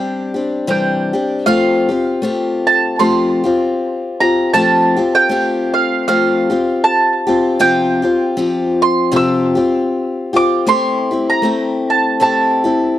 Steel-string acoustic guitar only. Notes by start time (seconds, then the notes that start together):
Already playing: G3 C4 D4 G4
0.34 G3 C4 D4 G4
0.67 C3 E3 G3 C4 D4 G4
1.13 G3 C4 D4 G4
1.46 F3 A3 C4 F4 G4
1.89 C4 F4 G4
2.22 A3 C4 F4 G4
2.99 F3 A3 C4 F4 G4
3.44 C4 F4 G4
4.20 C4 F4 G4
4.54 F3 A3 C4 F4 G4
4.97 C4 F4 G4
5.29 A3 C4 F4 G4
6.08 F3 A3 C4 F4 G4
6.50 C4 F4 G4
7.27 C4 F4 G4
7.59 C3 F3 C4 F4 G4
8.02 C4 F4 G4
8.37 F3 C4 F4 G4
9.12 C3 F3 C4 F4 G4
9.55 C4 F4 G4
10.33 C4 F4 G4
10.67 A3 C4 E4 G4
11.11 C4 E4 G4
11.42 A3 C4 E4 G4
12.20 A3 C4 E4 G4
12.64 C4 E4 G4